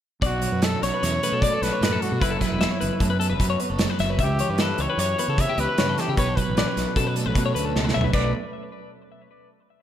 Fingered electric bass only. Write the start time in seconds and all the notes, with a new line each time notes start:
0.22 B1
0.52 F#2
0.82 B1
1.03 E2
1.32 B2
1.62 B1
1.81 F#2
2.12 B2
2.22 F#1
2.52 E1
2.82 F#1
3.01 F#2
3.31 F#1
3.40 F#2
3.70 F#1
4.00 F#1
4.19 C#2
4.50 G2
4.78 C#2
4.98 F#2
5.28 C#3
5.58 C#2
5.78 G2
6.08 C#3
6.18 B1
6.48 A1
6.77 B1
6.96 B2
7.26 B1
7.36 B2
7.55 D2
7.76 C#2
7.96 B1
8.14 B1